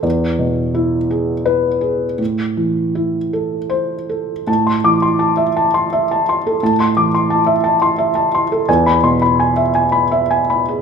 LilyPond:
<<
  \new Staff \with { instrumentName = "Felt piano" } { \time 6/8 \key a \minor \tempo 4. = 56 << { r2. | r2. | a''16 c'''8 c'''16 a''16 e''16 a''16 c'''16 e''16 a''16 c'''16 a'16 | a''16 c'''16 d'''16 c'''16 a''16 e''16 a''16 c'''16 e''16 a''16 c'''16 a'16 |
gis''16 b''8 b''16 gis''16 e''16 gis''16 b''16 e''16 gis''16 b''16 gis'16 | } \\ { r2 b'4 | r2 c''4 | r8 d'''16 r2 r16 | r2. |
r8 c'''16 r2 r16 | } >> }
  \new Staff \with { instrumentName = "Felt piano" } { \clef bass \time 6/8 \key a \minor e,8 b,8 e'8 gis'4 gis'8 | a,8 e8 e'8 a'4 a'8 | a,8 e4 r4. | a,8 e4 r4. |
e,8 b,4 r4. | }
>>